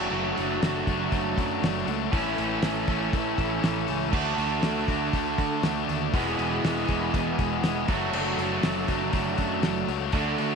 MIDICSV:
0, 0, Header, 1, 6, 480
1, 0, Start_track
1, 0, Tempo, 500835
1, 113, Time_signature, 4, 2, 24, 8
1, 10111, End_track
2, 0, Start_track
2, 0, Title_t, "Tonewheel organ"
2, 0, Program_c, 0, 16
2, 0, Note_on_c, 0, 57, 59
2, 0, Note_on_c, 0, 62, 64
2, 0, Note_on_c, 0, 66, 59
2, 0, Note_on_c, 0, 69, 59
2, 2012, Note_off_c, 0, 62, 0
2, 2014, Note_off_c, 0, 69, 0
2, 2015, Note_off_c, 0, 57, 0
2, 2020, Note_off_c, 0, 66, 0
2, 2056, Note_on_c, 0, 69, 67
2, 2064, Note_on_c, 0, 61, 66
2, 2065, Note_on_c, 0, 64, 65
2, 2071, Note_on_c, 0, 57, 76
2, 3941, Note_off_c, 0, 69, 0
2, 3945, Note_off_c, 0, 57, 0
2, 3953, Note_on_c, 0, 69, 73
2, 3954, Note_off_c, 0, 61, 0
2, 3955, Note_off_c, 0, 64, 0
2, 3955, Note_on_c, 0, 62, 74
2, 3957, Note_on_c, 0, 57, 68
2, 3957, Note_on_c, 0, 66, 69
2, 5858, Note_off_c, 0, 69, 0
2, 5859, Note_off_c, 0, 62, 0
2, 5860, Note_off_c, 0, 57, 0
2, 5860, Note_off_c, 0, 66, 0
2, 5869, Note_on_c, 0, 67, 65
2, 5871, Note_on_c, 0, 60, 69
2, 5872, Note_on_c, 0, 69, 62
2, 5874, Note_on_c, 0, 65, 65
2, 6027, Note_on_c, 0, 68, 73
2, 6030, Note_on_c, 0, 66, 68
2, 6035, Note_off_c, 0, 67, 0
2, 6035, Note_on_c, 0, 64, 65
2, 6036, Note_off_c, 0, 60, 0
2, 6036, Note_off_c, 0, 69, 0
2, 6037, Note_off_c, 0, 65, 0
2, 6040, Note_on_c, 0, 59, 62
2, 7534, Note_off_c, 0, 66, 0
2, 7538, Note_off_c, 0, 68, 0
2, 7539, Note_on_c, 0, 57, 62
2, 7541, Note_off_c, 0, 64, 0
2, 7544, Note_off_c, 0, 59, 0
2, 7544, Note_on_c, 0, 62, 57
2, 7544, Note_on_c, 0, 69, 57
2, 7546, Note_on_c, 0, 66, 64
2, 9684, Note_off_c, 0, 57, 0
2, 9686, Note_off_c, 0, 62, 0
2, 9686, Note_off_c, 0, 69, 0
2, 9687, Note_off_c, 0, 66, 0
2, 9713, Note_on_c, 0, 57, 66
2, 9715, Note_on_c, 0, 66, 66
2, 9717, Note_on_c, 0, 69, 62
2, 9728, Note_on_c, 0, 62, 74
2, 10111, Note_off_c, 0, 57, 0
2, 10111, Note_off_c, 0, 62, 0
2, 10111, Note_off_c, 0, 66, 0
2, 10111, Note_off_c, 0, 69, 0
2, 10111, End_track
3, 0, Start_track
3, 0, Title_t, "Overdriven electric guitar"
3, 0, Program_c, 1, 29
3, 0, Note_on_c, 1, 54, 106
3, 0, Note_on_c, 1, 57, 83
3, 0, Note_on_c, 1, 62, 103
3, 0, Note_on_c, 1, 66, 96
3, 1786, Note_off_c, 1, 54, 0
3, 1797, Note_off_c, 1, 62, 0
3, 1802, Note_off_c, 1, 66, 0
3, 2038, Note_off_c, 1, 57, 0
3, 2057, Note_on_c, 1, 64, 102
3, 3955, Note_off_c, 1, 64, 0
3, 5911, Note_on_c, 1, 64, 95
3, 7560, Note_off_c, 1, 64, 0
3, 10111, End_track
4, 0, Start_track
4, 0, Title_t, "Overdriven electric guitar"
4, 0, Program_c, 2, 29
4, 0, Note_on_c, 2, 66, 99
4, 87, Note_on_c, 2, 54, 81
4, 94, Note_on_c, 2, 57, 90
4, 99, Note_off_c, 2, 66, 0
4, 103, Note_on_c, 2, 62, 88
4, 110, Note_on_c, 2, 66, 102
4, 322, Note_off_c, 2, 66, 0
4, 334, Note_on_c, 2, 66, 71
4, 335, Note_off_c, 2, 62, 0
4, 346, Note_on_c, 2, 62, 60
4, 357, Note_off_c, 2, 57, 0
4, 361, Note_on_c, 2, 57, 60
4, 581, Note_off_c, 2, 54, 0
4, 818, Note_off_c, 2, 66, 0
4, 830, Note_on_c, 2, 66, 78
4, 832, Note_off_c, 2, 62, 0
4, 843, Note_on_c, 2, 62, 67
4, 854, Note_off_c, 2, 57, 0
4, 858, Note_on_c, 2, 57, 55
4, 1069, Note_on_c, 2, 54, 92
4, 1081, Note_off_c, 2, 62, 0
4, 1083, Note_off_c, 2, 57, 0
4, 1087, Note_on_c, 2, 57, 85
4, 1091, Note_off_c, 2, 66, 0
4, 1092, Note_on_c, 2, 62, 89
4, 1102, Note_on_c, 2, 66, 98
4, 1298, Note_off_c, 2, 66, 0
4, 1310, Note_on_c, 2, 66, 79
4, 1317, Note_off_c, 2, 62, 0
4, 1328, Note_on_c, 2, 62, 82
4, 1343, Note_off_c, 2, 57, 0
4, 1347, Note_on_c, 2, 57, 54
4, 1538, Note_off_c, 2, 54, 0
4, 1549, Note_on_c, 2, 54, 80
4, 1555, Note_off_c, 2, 57, 0
4, 1558, Note_off_c, 2, 62, 0
4, 1559, Note_on_c, 2, 57, 85
4, 1562, Note_off_c, 2, 66, 0
4, 1569, Note_on_c, 2, 62, 90
4, 1573, Note_on_c, 2, 66, 91
4, 1774, Note_off_c, 2, 66, 0
4, 1785, Note_on_c, 2, 66, 78
4, 1792, Note_off_c, 2, 62, 0
4, 1804, Note_on_c, 2, 62, 64
4, 1814, Note_off_c, 2, 57, 0
4, 1818, Note_on_c, 2, 57, 57
4, 2017, Note_off_c, 2, 66, 0
4, 2019, Note_off_c, 2, 54, 0
4, 2026, Note_off_c, 2, 62, 0
4, 2035, Note_on_c, 2, 45, 99
4, 2041, Note_on_c, 2, 52, 97
4, 2042, Note_off_c, 2, 57, 0
4, 2045, Note_on_c, 2, 57, 97
4, 2052, Note_on_c, 2, 61, 103
4, 2059, Note_on_c, 2, 69, 81
4, 2278, Note_off_c, 2, 69, 0
4, 2282, Note_on_c, 2, 69, 60
4, 2284, Note_off_c, 2, 61, 0
4, 2296, Note_on_c, 2, 61, 68
4, 2304, Note_off_c, 2, 57, 0
4, 2308, Note_on_c, 2, 57, 58
4, 2517, Note_off_c, 2, 45, 0
4, 2520, Note_off_c, 2, 52, 0
4, 2761, Note_off_c, 2, 69, 0
4, 2765, Note_on_c, 2, 69, 69
4, 2769, Note_off_c, 2, 61, 0
4, 2781, Note_on_c, 2, 61, 73
4, 2788, Note_off_c, 2, 57, 0
4, 2791, Note_on_c, 2, 57, 59
4, 3000, Note_off_c, 2, 57, 0
4, 3002, Note_on_c, 2, 45, 83
4, 3012, Note_off_c, 2, 61, 0
4, 3012, Note_on_c, 2, 57, 80
4, 3013, Note_on_c, 2, 52, 92
4, 3017, Note_off_c, 2, 69, 0
4, 3024, Note_on_c, 2, 61, 87
4, 3028, Note_on_c, 2, 69, 87
4, 3221, Note_off_c, 2, 69, 0
4, 3233, Note_on_c, 2, 69, 85
4, 3235, Note_off_c, 2, 61, 0
4, 3244, Note_off_c, 2, 57, 0
4, 3246, Note_on_c, 2, 61, 70
4, 3256, Note_on_c, 2, 57, 59
4, 3457, Note_off_c, 2, 52, 0
4, 3466, Note_off_c, 2, 57, 0
4, 3469, Note_on_c, 2, 52, 76
4, 3477, Note_on_c, 2, 57, 75
4, 3480, Note_off_c, 2, 61, 0
4, 3481, Note_off_c, 2, 45, 0
4, 3486, Note_off_c, 2, 69, 0
4, 3491, Note_on_c, 2, 61, 84
4, 3497, Note_on_c, 2, 69, 89
4, 3692, Note_off_c, 2, 69, 0
4, 3704, Note_on_c, 2, 69, 67
4, 3707, Note_off_c, 2, 61, 0
4, 3718, Note_on_c, 2, 61, 71
4, 3719, Note_off_c, 2, 57, 0
4, 3731, Note_on_c, 2, 57, 64
4, 3933, Note_off_c, 2, 52, 0
4, 3937, Note_off_c, 2, 69, 0
4, 3937, Note_on_c, 2, 50, 83
4, 3942, Note_off_c, 2, 57, 0
4, 3944, Note_off_c, 2, 61, 0
4, 3954, Note_on_c, 2, 57, 84
4, 3964, Note_on_c, 2, 62, 81
4, 3968, Note_on_c, 2, 66, 95
4, 4177, Note_off_c, 2, 66, 0
4, 4181, Note_on_c, 2, 66, 72
4, 4189, Note_off_c, 2, 62, 0
4, 4199, Note_off_c, 2, 57, 0
4, 4201, Note_on_c, 2, 62, 64
4, 4211, Note_on_c, 2, 57, 55
4, 4428, Note_off_c, 2, 50, 0
4, 4675, Note_off_c, 2, 66, 0
4, 4679, Note_on_c, 2, 66, 74
4, 4692, Note_off_c, 2, 62, 0
4, 4697, Note_off_c, 2, 57, 0
4, 4704, Note_on_c, 2, 62, 62
4, 4709, Note_on_c, 2, 57, 62
4, 4913, Note_on_c, 2, 50, 82
4, 4915, Note_off_c, 2, 57, 0
4, 4919, Note_off_c, 2, 62, 0
4, 4926, Note_on_c, 2, 57, 92
4, 4930, Note_on_c, 2, 62, 85
4, 4938, Note_off_c, 2, 66, 0
4, 4942, Note_on_c, 2, 66, 79
4, 5152, Note_off_c, 2, 66, 0
4, 5156, Note_off_c, 2, 62, 0
4, 5156, Note_on_c, 2, 66, 75
4, 5168, Note_on_c, 2, 62, 68
4, 5172, Note_off_c, 2, 57, 0
4, 5183, Note_on_c, 2, 57, 68
4, 5388, Note_off_c, 2, 50, 0
4, 5396, Note_off_c, 2, 57, 0
4, 5400, Note_on_c, 2, 50, 89
4, 5405, Note_off_c, 2, 62, 0
4, 5407, Note_on_c, 2, 57, 81
4, 5417, Note_on_c, 2, 62, 83
4, 5418, Note_off_c, 2, 66, 0
4, 5422, Note_on_c, 2, 66, 78
4, 5632, Note_off_c, 2, 66, 0
4, 5636, Note_on_c, 2, 66, 66
4, 5638, Note_off_c, 2, 62, 0
4, 5650, Note_on_c, 2, 62, 73
4, 5655, Note_off_c, 2, 57, 0
4, 5667, Note_on_c, 2, 57, 58
4, 5866, Note_off_c, 2, 50, 0
4, 5871, Note_off_c, 2, 62, 0
4, 5876, Note_on_c, 2, 40, 89
4, 5879, Note_off_c, 2, 57, 0
4, 5886, Note_on_c, 2, 47, 95
4, 5888, Note_on_c, 2, 52, 81
4, 5892, Note_off_c, 2, 66, 0
4, 5894, Note_on_c, 2, 59, 93
4, 5895, Note_on_c, 2, 56, 98
4, 5896, Note_on_c, 2, 68, 92
4, 6105, Note_off_c, 2, 68, 0
4, 6114, Note_off_c, 2, 59, 0
4, 6117, Note_on_c, 2, 68, 75
4, 6122, Note_off_c, 2, 56, 0
4, 6126, Note_on_c, 2, 59, 76
4, 6133, Note_on_c, 2, 56, 62
4, 6137, Note_off_c, 2, 52, 0
4, 6148, Note_on_c, 2, 52, 60
4, 6358, Note_off_c, 2, 40, 0
4, 6363, Note_off_c, 2, 47, 0
4, 6571, Note_off_c, 2, 68, 0
4, 6582, Note_off_c, 2, 59, 0
4, 6583, Note_on_c, 2, 68, 72
4, 6593, Note_off_c, 2, 56, 0
4, 6593, Note_on_c, 2, 59, 70
4, 6604, Note_off_c, 2, 52, 0
4, 6604, Note_on_c, 2, 56, 69
4, 6616, Note_on_c, 2, 52, 72
4, 6841, Note_on_c, 2, 40, 80
4, 6847, Note_off_c, 2, 52, 0
4, 6852, Note_off_c, 2, 56, 0
4, 6853, Note_on_c, 2, 47, 83
4, 6857, Note_off_c, 2, 59, 0
4, 6859, Note_on_c, 2, 52, 79
4, 6863, Note_on_c, 2, 56, 84
4, 6865, Note_off_c, 2, 68, 0
4, 6869, Note_on_c, 2, 59, 83
4, 6876, Note_on_c, 2, 68, 110
4, 7064, Note_off_c, 2, 68, 0
4, 7074, Note_off_c, 2, 59, 0
4, 7075, Note_on_c, 2, 68, 77
4, 7083, Note_off_c, 2, 56, 0
4, 7085, Note_on_c, 2, 59, 73
4, 7093, Note_off_c, 2, 52, 0
4, 7095, Note_on_c, 2, 56, 65
4, 7104, Note_on_c, 2, 52, 66
4, 7299, Note_off_c, 2, 52, 0
4, 7309, Note_off_c, 2, 56, 0
4, 7311, Note_on_c, 2, 52, 83
4, 7319, Note_off_c, 2, 59, 0
4, 7320, Note_off_c, 2, 40, 0
4, 7320, Note_on_c, 2, 56, 86
4, 7325, Note_off_c, 2, 68, 0
4, 7326, Note_off_c, 2, 47, 0
4, 7331, Note_on_c, 2, 59, 81
4, 7336, Note_on_c, 2, 68, 103
4, 7541, Note_off_c, 2, 52, 0
4, 7545, Note_off_c, 2, 56, 0
4, 7551, Note_off_c, 2, 59, 0
4, 7553, Note_off_c, 2, 68, 0
4, 7557, Note_on_c, 2, 66, 86
4, 7571, Note_on_c, 2, 57, 81
4, 7572, Note_on_c, 2, 62, 86
4, 7590, Note_on_c, 2, 54, 65
4, 7792, Note_off_c, 2, 54, 0
4, 7795, Note_on_c, 2, 54, 91
4, 7801, Note_off_c, 2, 57, 0
4, 7805, Note_on_c, 2, 57, 88
4, 7815, Note_off_c, 2, 62, 0
4, 7819, Note_on_c, 2, 62, 96
4, 7823, Note_off_c, 2, 66, 0
4, 7827, Note_on_c, 2, 66, 95
4, 8022, Note_off_c, 2, 66, 0
4, 8026, Note_on_c, 2, 66, 73
4, 8040, Note_off_c, 2, 62, 0
4, 8044, Note_on_c, 2, 62, 71
4, 8055, Note_off_c, 2, 57, 0
4, 8058, Note_on_c, 2, 57, 59
4, 8511, Note_off_c, 2, 66, 0
4, 8515, Note_on_c, 2, 66, 82
4, 8524, Note_off_c, 2, 62, 0
4, 8527, Note_on_c, 2, 62, 71
4, 8539, Note_off_c, 2, 57, 0
4, 8543, Note_on_c, 2, 57, 63
4, 8738, Note_off_c, 2, 54, 0
4, 8742, Note_on_c, 2, 54, 79
4, 8747, Note_off_c, 2, 57, 0
4, 8750, Note_on_c, 2, 57, 90
4, 8759, Note_off_c, 2, 62, 0
4, 8763, Note_on_c, 2, 62, 81
4, 8768, Note_off_c, 2, 66, 0
4, 8772, Note_on_c, 2, 66, 96
4, 8976, Note_off_c, 2, 66, 0
4, 8980, Note_on_c, 2, 66, 73
4, 8994, Note_off_c, 2, 62, 0
4, 8998, Note_on_c, 2, 62, 71
4, 9004, Note_off_c, 2, 57, 0
4, 9008, Note_on_c, 2, 57, 61
4, 9227, Note_off_c, 2, 54, 0
4, 9231, Note_off_c, 2, 57, 0
4, 9231, Note_on_c, 2, 54, 85
4, 9243, Note_off_c, 2, 62, 0
4, 9243, Note_on_c, 2, 57, 70
4, 9254, Note_on_c, 2, 62, 93
4, 9256, Note_off_c, 2, 66, 0
4, 9267, Note_on_c, 2, 66, 86
4, 9463, Note_off_c, 2, 66, 0
4, 9474, Note_on_c, 2, 66, 76
4, 9479, Note_off_c, 2, 62, 0
4, 9491, Note_on_c, 2, 62, 63
4, 9492, Note_off_c, 2, 57, 0
4, 9503, Note_on_c, 2, 57, 53
4, 9698, Note_off_c, 2, 54, 0
4, 9700, Note_off_c, 2, 66, 0
4, 9708, Note_off_c, 2, 62, 0
4, 9715, Note_off_c, 2, 57, 0
4, 9718, Note_on_c, 2, 50, 76
4, 9730, Note_on_c, 2, 57, 84
4, 9733, Note_on_c, 2, 62, 107
4, 9747, Note_on_c, 2, 66, 101
4, 9936, Note_off_c, 2, 66, 0
4, 9947, Note_on_c, 2, 66, 69
4, 9950, Note_off_c, 2, 62, 0
4, 9961, Note_on_c, 2, 62, 66
4, 9964, Note_off_c, 2, 57, 0
4, 9976, Note_on_c, 2, 57, 58
4, 10111, Note_off_c, 2, 50, 0
4, 10111, Note_off_c, 2, 57, 0
4, 10111, Note_off_c, 2, 62, 0
4, 10111, Note_off_c, 2, 66, 0
4, 10111, End_track
5, 0, Start_track
5, 0, Title_t, "Picked electric bass"
5, 0, Program_c, 3, 34
5, 108, Note_on_c, 3, 30, 97
5, 302, Note_off_c, 3, 30, 0
5, 366, Note_on_c, 3, 30, 78
5, 553, Note_off_c, 3, 30, 0
5, 597, Note_on_c, 3, 30, 99
5, 789, Note_off_c, 3, 30, 0
5, 833, Note_on_c, 3, 30, 89
5, 1026, Note_off_c, 3, 30, 0
5, 1081, Note_on_c, 3, 30, 86
5, 1271, Note_off_c, 3, 30, 0
5, 1322, Note_on_c, 3, 42, 84
5, 1512, Note_off_c, 3, 42, 0
5, 1556, Note_on_c, 3, 30, 90
5, 1748, Note_off_c, 3, 30, 0
5, 1790, Note_on_c, 3, 37, 80
5, 1985, Note_off_c, 3, 37, 0
5, 2042, Note_on_c, 3, 33, 88
5, 2232, Note_off_c, 3, 33, 0
5, 2287, Note_on_c, 3, 33, 89
5, 2475, Note_off_c, 3, 33, 0
5, 2525, Note_on_c, 3, 33, 96
5, 2715, Note_off_c, 3, 33, 0
5, 2766, Note_on_c, 3, 33, 84
5, 2955, Note_off_c, 3, 33, 0
5, 3001, Note_on_c, 3, 33, 76
5, 3192, Note_off_c, 3, 33, 0
5, 3243, Note_on_c, 3, 33, 77
5, 3434, Note_off_c, 3, 33, 0
5, 3502, Note_on_c, 3, 33, 88
5, 3685, Note_off_c, 3, 33, 0
5, 3731, Note_on_c, 3, 37, 83
5, 3964, Note_off_c, 3, 37, 0
5, 3964, Note_on_c, 3, 38, 97
5, 4155, Note_off_c, 3, 38, 0
5, 4196, Note_on_c, 3, 38, 85
5, 4390, Note_off_c, 3, 38, 0
5, 4440, Note_on_c, 3, 38, 97
5, 4632, Note_off_c, 3, 38, 0
5, 4675, Note_on_c, 3, 38, 74
5, 4869, Note_off_c, 3, 38, 0
5, 4928, Note_on_c, 3, 38, 81
5, 5117, Note_off_c, 3, 38, 0
5, 5163, Note_on_c, 3, 50, 83
5, 5354, Note_off_c, 3, 50, 0
5, 5397, Note_on_c, 3, 38, 92
5, 5590, Note_off_c, 3, 38, 0
5, 5644, Note_on_c, 3, 39, 78
5, 5835, Note_off_c, 3, 39, 0
5, 5880, Note_on_c, 3, 28, 101
5, 6072, Note_off_c, 3, 28, 0
5, 6119, Note_on_c, 3, 28, 94
5, 6312, Note_off_c, 3, 28, 0
5, 6361, Note_on_c, 3, 28, 94
5, 6552, Note_off_c, 3, 28, 0
5, 6608, Note_on_c, 3, 28, 86
5, 6797, Note_off_c, 3, 28, 0
5, 6844, Note_on_c, 3, 28, 81
5, 7034, Note_off_c, 3, 28, 0
5, 7087, Note_on_c, 3, 28, 89
5, 7276, Note_off_c, 3, 28, 0
5, 7313, Note_on_c, 3, 28, 84
5, 7507, Note_off_c, 3, 28, 0
5, 7560, Note_on_c, 3, 30, 88
5, 7752, Note_off_c, 3, 30, 0
5, 7791, Note_on_c, 3, 30, 91
5, 7986, Note_off_c, 3, 30, 0
5, 8031, Note_on_c, 3, 30, 83
5, 8226, Note_off_c, 3, 30, 0
5, 8275, Note_on_c, 3, 30, 92
5, 8468, Note_off_c, 3, 30, 0
5, 8517, Note_on_c, 3, 30, 95
5, 8709, Note_off_c, 3, 30, 0
5, 8756, Note_on_c, 3, 30, 97
5, 8949, Note_off_c, 3, 30, 0
5, 9000, Note_on_c, 3, 42, 88
5, 9191, Note_off_c, 3, 42, 0
5, 9221, Note_on_c, 3, 30, 87
5, 9419, Note_off_c, 3, 30, 0
5, 9472, Note_on_c, 3, 37, 90
5, 9666, Note_off_c, 3, 37, 0
5, 9712, Note_on_c, 3, 38, 102
5, 9905, Note_off_c, 3, 38, 0
5, 9952, Note_on_c, 3, 38, 83
5, 10111, Note_off_c, 3, 38, 0
5, 10111, End_track
6, 0, Start_track
6, 0, Title_t, "Drums"
6, 360, Note_on_c, 9, 46, 55
6, 455, Note_off_c, 9, 46, 0
6, 600, Note_on_c, 9, 46, 85
6, 602, Note_on_c, 9, 38, 115
6, 696, Note_off_c, 9, 46, 0
6, 698, Note_off_c, 9, 38, 0
6, 836, Note_on_c, 9, 36, 83
6, 841, Note_on_c, 9, 46, 54
6, 932, Note_off_c, 9, 36, 0
6, 937, Note_off_c, 9, 46, 0
6, 1075, Note_on_c, 9, 46, 75
6, 1076, Note_on_c, 9, 36, 95
6, 1171, Note_off_c, 9, 46, 0
6, 1172, Note_off_c, 9, 36, 0
6, 1319, Note_on_c, 9, 36, 93
6, 1326, Note_on_c, 9, 46, 64
6, 1415, Note_off_c, 9, 36, 0
6, 1421, Note_off_c, 9, 46, 0
6, 1569, Note_on_c, 9, 46, 78
6, 1571, Note_on_c, 9, 38, 106
6, 1665, Note_off_c, 9, 46, 0
6, 1667, Note_off_c, 9, 38, 0
6, 1800, Note_on_c, 9, 46, 59
6, 1896, Note_off_c, 9, 46, 0
6, 2041, Note_on_c, 9, 36, 127
6, 2043, Note_on_c, 9, 46, 88
6, 2137, Note_off_c, 9, 36, 0
6, 2139, Note_off_c, 9, 46, 0
6, 2283, Note_on_c, 9, 46, 61
6, 2379, Note_off_c, 9, 46, 0
6, 2516, Note_on_c, 9, 46, 93
6, 2518, Note_on_c, 9, 38, 122
6, 2612, Note_off_c, 9, 46, 0
6, 2614, Note_off_c, 9, 38, 0
6, 2757, Note_on_c, 9, 46, 61
6, 2760, Note_on_c, 9, 36, 95
6, 2852, Note_off_c, 9, 46, 0
6, 2856, Note_off_c, 9, 36, 0
6, 3002, Note_on_c, 9, 36, 99
6, 3006, Note_on_c, 9, 46, 81
6, 3098, Note_off_c, 9, 36, 0
6, 3102, Note_off_c, 9, 46, 0
6, 3241, Note_on_c, 9, 36, 85
6, 3247, Note_on_c, 9, 46, 72
6, 3337, Note_off_c, 9, 36, 0
6, 3343, Note_off_c, 9, 46, 0
6, 3485, Note_on_c, 9, 46, 80
6, 3487, Note_on_c, 9, 38, 108
6, 3581, Note_off_c, 9, 46, 0
6, 3582, Note_off_c, 9, 38, 0
6, 3718, Note_on_c, 9, 46, 60
6, 3814, Note_off_c, 9, 46, 0
6, 3957, Note_on_c, 9, 36, 116
6, 3958, Note_on_c, 9, 49, 113
6, 4053, Note_off_c, 9, 36, 0
6, 4054, Note_off_c, 9, 49, 0
6, 4201, Note_on_c, 9, 46, 55
6, 4297, Note_off_c, 9, 46, 0
6, 4435, Note_on_c, 9, 46, 82
6, 4436, Note_on_c, 9, 38, 127
6, 4530, Note_off_c, 9, 46, 0
6, 4532, Note_off_c, 9, 38, 0
6, 4679, Note_on_c, 9, 36, 85
6, 4685, Note_on_c, 9, 46, 55
6, 4775, Note_off_c, 9, 36, 0
6, 4781, Note_off_c, 9, 46, 0
6, 4920, Note_on_c, 9, 36, 96
6, 4921, Note_on_c, 9, 46, 81
6, 5015, Note_off_c, 9, 36, 0
6, 5017, Note_off_c, 9, 46, 0
6, 5160, Note_on_c, 9, 36, 95
6, 5161, Note_on_c, 9, 46, 59
6, 5256, Note_off_c, 9, 36, 0
6, 5257, Note_off_c, 9, 46, 0
6, 5398, Note_on_c, 9, 46, 78
6, 5400, Note_on_c, 9, 38, 107
6, 5494, Note_off_c, 9, 46, 0
6, 5495, Note_off_c, 9, 38, 0
6, 5646, Note_on_c, 9, 46, 59
6, 5741, Note_off_c, 9, 46, 0
6, 5881, Note_on_c, 9, 36, 115
6, 5882, Note_on_c, 9, 46, 84
6, 5976, Note_off_c, 9, 36, 0
6, 5978, Note_off_c, 9, 46, 0
6, 6124, Note_on_c, 9, 46, 57
6, 6220, Note_off_c, 9, 46, 0
6, 6368, Note_on_c, 9, 46, 83
6, 6370, Note_on_c, 9, 38, 107
6, 6464, Note_off_c, 9, 46, 0
6, 6466, Note_off_c, 9, 38, 0
6, 6598, Note_on_c, 9, 46, 64
6, 6601, Note_on_c, 9, 36, 88
6, 6694, Note_off_c, 9, 46, 0
6, 6697, Note_off_c, 9, 36, 0
6, 6842, Note_on_c, 9, 36, 98
6, 6847, Note_on_c, 9, 46, 93
6, 6938, Note_off_c, 9, 36, 0
6, 6942, Note_off_c, 9, 46, 0
6, 7080, Note_on_c, 9, 46, 66
6, 7081, Note_on_c, 9, 36, 94
6, 7176, Note_off_c, 9, 46, 0
6, 7177, Note_off_c, 9, 36, 0
6, 7318, Note_on_c, 9, 46, 88
6, 7320, Note_on_c, 9, 38, 105
6, 7414, Note_off_c, 9, 46, 0
6, 7416, Note_off_c, 9, 38, 0
6, 7555, Note_on_c, 9, 46, 67
6, 7558, Note_on_c, 9, 36, 113
6, 7651, Note_off_c, 9, 46, 0
6, 7653, Note_off_c, 9, 36, 0
6, 7794, Note_on_c, 9, 57, 110
6, 7890, Note_off_c, 9, 57, 0
6, 8037, Note_on_c, 9, 46, 65
6, 8133, Note_off_c, 9, 46, 0
6, 8273, Note_on_c, 9, 46, 82
6, 8275, Note_on_c, 9, 38, 115
6, 8369, Note_off_c, 9, 46, 0
6, 8371, Note_off_c, 9, 38, 0
6, 8512, Note_on_c, 9, 46, 66
6, 8515, Note_on_c, 9, 36, 85
6, 8608, Note_off_c, 9, 46, 0
6, 8611, Note_off_c, 9, 36, 0
6, 8749, Note_on_c, 9, 46, 85
6, 8754, Note_on_c, 9, 36, 96
6, 8845, Note_off_c, 9, 46, 0
6, 8850, Note_off_c, 9, 36, 0
6, 8988, Note_on_c, 9, 46, 62
6, 8994, Note_on_c, 9, 36, 80
6, 9084, Note_off_c, 9, 46, 0
6, 9090, Note_off_c, 9, 36, 0
6, 9229, Note_on_c, 9, 46, 77
6, 9231, Note_on_c, 9, 38, 126
6, 9325, Note_off_c, 9, 46, 0
6, 9327, Note_off_c, 9, 38, 0
6, 9473, Note_on_c, 9, 46, 58
6, 9569, Note_off_c, 9, 46, 0
6, 9702, Note_on_c, 9, 46, 83
6, 9711, Note_on_c, 9, 36, 109
6, 9798, Note_off_c, 9, 46, 0
6, 9807, Note_off_c, 9, 36, 0
6, 9951, Note_on_c, 9, 46, 57
6, 10047, Note_off_c, 9, 46, 0
6, 10111, End_track
0, 0, End_of_file